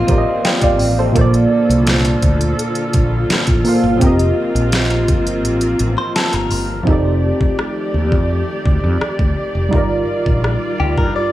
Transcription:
Already playing: string section D#3 A#3 C4 F4, synth keys F3 C4 G4 A#4 D#5, clean electric guitar F4
0.07 fretless electric bass A1, synth keys F3 C4 G4 A#4, kick, closed hi-hat
0.12 synth keys D5
0.18 synth keys D#5
0.45 synth keys D#5 G5, snare, closed hi-hat
0.61 fretless electric bass G1, synth keys D5 F5, kick, closed hi-hat
0.79 fretless electric bass A1, open hi-hat
0.99 synth keys A4 C5
1.12 fretless electric bass A#1, synth keys A#2 A#3, string section D3, kick, closed hi-hat
1.16 string section F4 A4, synth keys A4 C5
1.21 synth keys D5
1.34 closed hi-hat
1.69 fretless electric bass C2, closed hi-hat
1.87 snare, closed hi-hat
2.05 closed hi-hat
2.22 fretless electric bass D2, kick, closed hi-hat
2.41 closed hi-hat
2.59 closed hi-hat
2.75 closed hi-hat
2.93 fretless electric bass A#1, kick, closed hi-hat
3.30 muted fretless electric bass stroke, snare, closed hi-hat
3.47 fretless electric bass A1, kick, closed hi-hat
3.64 synth keys A#2 A#3 A4 C5, open hi-hat
3.69 synth keys F5
3.83 fretless electric bass G1
3.97 synth keys F3 C4
4.01 fretless electric bass F1, string section D#3 A#3 C4, synth keys G4 A#4, kick, closed hi-hat
4.07 synth keys D#5
4.19 closed hi-hat
4.55 fretless electric bass A#1, closed hi-hat
4.72 snare, closed hi-hat
4.90 closed hi-hat
5.08 fretless electric bass G1, kick, closed hi-hat
5.27 closed hi-hat
5.44 fretless electric bass A1, closed hi-hat
5.61 closed hi-hat
5.79 fretless electric bass A1, closed hi-hat
5.98 clean electric guitar C5
6.16 clean electric guitar A4, snare, closed hi-hat
6.33 fretless electric bass G1, clean electric guitar A#4, closed hi-hat
6.51 fretless electric bass G1, open hi-hat
6.83 fretless electric bass F1, string section D#3 A3 G4 D5, synth keys F3 C4 D#4, kick
6.89 synth keys G4 A4 D5
7.41 kick
7.59 cross-stick
7.94 fretless electric bass D#2
8.12 fretless electric bass F2, kick
8.66 fretless electric bass D2, kick
8.84 fretless electric bass F2
9.01 muted fretless electric bass stroke, cross-stick
9.19 fretless electric bass D2, kick
9.55 fretless electric bass F1
9.69 fretless electric bass G1, synth keys G3 D#4, string section G3 F4, kick
9.73 synth keys F4 A#4
9.78 synth keys D5
10.26 fretless electric bass A#1, kick
10.44 cross-stick
10.80 fretless electric bass D2, clean electric guitar G4
10.98 fretless electric bass G2, clean electric guitar A#4, kick
11.16 clean electric guitar D5

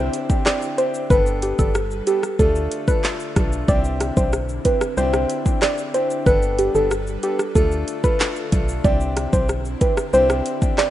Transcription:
Already playing: fm bass C2, analog synth pad D3 C4 D4 E4, grand piano C4 D4 E4 G4, synth pluck C5
0.14 closed hi-hat, shaker
0.29 grand piano C4 D4 E4 G4, kick, shaker
0.46 synth pluck D5, cross-stick, clap, shaker
0.62 shaker
0.78 grand piano C4 D4 E4 G4, synth pluck C5, closed hi-hat, shaker
0.94 shaker
1.10 fm bass G1, analog synth pad G3 A4 B4, grand piano B3 D4 G4 A4, synth pluck B4, kick, shaker
1.26 shaker
1.42 synth pluck G4, closed hi-hat, shaker
1.58 fm bass G1, grand piano B3 D4 G4 A4, synth pluck A4, kick, shaker
1.75 cross-stick, shaker
1.91 shaker
2.07 grand piano B3 D4 G4 A4, synth pluck G4, closed hi-hat, shaker
2.23 cross-stick, shaker
2.39 fm bass D2, analog synth pad D3 F4, grand piano A3 D4 F4 A4, synth pluck A4, kick, shaker
2.56 shaker
2.72 closed hi-hat, shaker
2.88 grand piano A3 D4 F4 A4, synth pluck B4, kick, shaker
3.04 clap, shaker
3.20 shaker
3.36 fm bass B1, grand piano A3 D4 F4 A4, kick, cross-stick, closed hi-hat, shaker
3.52 shaker
3.68 fm bass C2, analog synth pad D3 C4 D4 E4, grand piano C4 D4 E4 G4, synth pluck D5, kick, shaker
3.84 shaker
4.00 cross-stick, closed hi-hat, shaker
4.17 fm bass B1, grand piano C4 D4 E4 G4, synth pluck C5, kick, shaker
4.33 cross-stick, shaker
4.49 shaker
4.65 grand piano C4 D4 E4 G4, synth pluck B4, kick, closed hi-hat, shaker
4.81 cross-stick, shaker
4.97 fm bass C2, grand piano C4 D4 E4 G4, synth pluck C5, shaker
5.13 cross-stick, shaker
5.30 closed hi-hat, shaker
5.46 grand piano C4 D4 E4 G4, kick, shaker
5.62 synth pluck D5, cross-stick, clap, shaker
5.78 shaker
5.94 grand piano C4 D4 E4 G4, synth pluck C5, closed hi-hat, shaker
6.10 shaker
6.26 fm bass G1, analog synth pad G3 A4 B4, grand piano B3 D4 G4 A4, synth pluck B4, kick, shaker
6.42 shaker
6.59 synth pluck G4, closed hi-hat, shaker
6.74 fm bass G1, grand piano B3 D4 G4 A4, synth pluck A4, shaker
6.91 cross-stick, shaker
7.07 shaker
7.23 grand piano B3 D4 G4 A4, synth pluck G4, closed hi-hat, shaker
7.39 cross-stick, shaker
7.55 fm bass D2, analog synth pad D3 F4, grand piano A3 D4 F4 A4, synth pluck A4, kick, shaker
7.72 shaker
7.88 closed hi-hat, shaker
8.04 grand piano A3 D4 F4 A4, synth pluck B4, kick, shaker
8.20 clap, shaker
8.36 shaker
8.52 fm bass B1, grand piano A3 D4 F4 A4, kick, closed hi-hat, shaker
8.69 shaker
8.84 fm bass C2, analog synth pad D3 C4 E4, grand piano C4 D4 E4 G4, synth pluck D5, kick, shaker
9.00 shaker
9.17 cross-stick, closed hi-hat, shaker
9.33 fm bass B1, grand piano C4 D4 E4 G4, synth pluck C5, kick, shaker
9.49 cross-stick, shaker
9.65 shaker
9.81 grand piano C4 D4 E4 G4, synth pluck B4, kick, closed hi-hat, shaker
9.97 cross-stick, shaker
10.13 fm bass C2, grand piano C4 D4 E4 G4, synth pluck C5, shaker
10.30 cross-stick, shaker
10.46 closed hi-hat, shaker
10.62 grand piano C4 D4 E4 G4, kick, shaker
10.78 synth pluck D5, cross-stick, clap, shaker

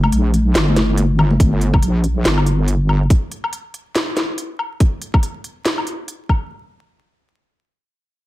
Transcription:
Already playing: wobble bass G1
0.04 high conga, low woodblock
0.12 wobble bass A#1, closed hi-hat
0.34 closed hi-hat, high conga
0.55 wobble bass G1, snare, closed hi-hat
0.68 high conga
0.76 snare, closed hi-hat
0.98 closed hi-hat, high conga
1.19 low conga, low woodblock
1.30 high conga
1.40 wobble bass G1, kick, closed hi-hat
1.61 closed hi-hat
1.74 kick, low woodblock
1.83 wobble bass A#1, closed hi-hat
2.04 closed hi-hat
2.25 wobble bass G1, snare, closed hi-hat
2.37 low woodblock
2.46 closed hi-hat
2.68 closed hi-hat
2.89 low woodblock
3.10 kick, closed hi-hat
3.32 closed hi-hat
3.44 low woodblock
3.53 closed hi-hat
3.74 closed hi-hat
3.95 snare, closed hi-hat
4.17 snare, closed hi-hat
4.38 closed hi-hat
4.59 low woodblock
4.80 kick, closed hi-hat
5.02 closed hi-hat
5.14 kick, low woodblock
5.23 closed hi-hat
5.44 closed hi-hat
5.65 snare, closed hi-hat
5.78 low woodblock
5.87 closed hi-hat
6.08 closed hi-hat
6.29 kick, low woodblock

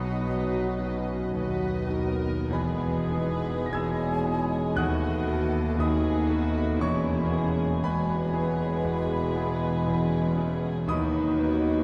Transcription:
Already playing: grand piano B1 B2 B3 D#4 F#4 G#4 D#5 F#5 G#5, double bass section B1, cello section B2, bassoon F#3, french horn section F#3, viola section D#4, clarinet F#4, flute F#4, violin section B4 D#5, cor anglais D#5
0.27 grand piano B1 B2, viola section D#4
0.79 grand piano B3 D#4 F#4, viola section C#4
1.33 grand piano B1 B2, cello section D#2, double bass section D#2, viola section B3, violin section B4 D#5
1.88 grand piano B3 D#4 F#4, violin section A#4
2.50 grand piano E1 E2 B5, double bass section E1, cello section E2, bassoon G#3, french horn section B3, clarinet E4, violin section G#4 B4, flute B4, cor anglais D#5
2.54 grand piano B4 G#5
3.11 grand piano B3 D#4 G#4, violin section B4
3.66 grand piano E2 A#6
3.71 grand piano E1 G#5 E6 G#6, bassoon G#3, viola section A#3, clarinet E4, french horn section G#4, violin section C#5, cor anglais D#5, flute G#5
4.25 viola section G#3, grand piano B3 D#4 G#4
4.75 cello section D#2, grand piano D#2 D#3 F#5 D#6 F#6, double bass section D#2, bassoon A3, viola section B3, violin section F#4 D#5, french horn section F#4, clarinet F#4, flute F#5
4.80 cor anglais B4
5.26 grand piano B3 F#4 A4, violin section A4
5.77 grand piano D#2 D#3 D#5 D#6, bassoon A3, viola section B3, french horn section D#4, clarinet F#4, violin section G#4 B4, cor anglais B4, flute D#5
5.81 grand piano B5
6.28 grand piano B3 F#4 A4, violin section F#4
6.77 grand piano E1 E2, double bass section E1, cello section E2, bassoon G#3, viola section A#3, french horn section C#4, violin section E4 G#4, clarinet E4, flute C#5
6.81 cor anglais B4, grand piano C#5 C#6
7.28 grand piano B3 E4 G#4, violin section G#4
7.82 grand piano E1 E2 B4 G#5 B5, viola section G#3, bassoon G#3, french horn section B3, clarinet E4, violin section G#4 C#5, flute B4, cor anglais B4
8.33 grand piano B3 E4 G#4
8.84 grand piano E1 E2, viola section G#3, violin section B4
9.36 viola section B3, grand piano B3 E4 G#4
9.86 grand piano E1 E2, viola section C#4
10.37 grand piano B3 E4 G#4
10.87 grand piano D#2 D#3 D#5 B5 D#6, cello section D#2, double bass section D#2, bassoon F#3, viola section B3, clarinet D#4, french horn section D#4, violin section F#4 B4, cor anglais B4, flute D#5
11.39 viola section A#3, grand piano B3 F#4 B4

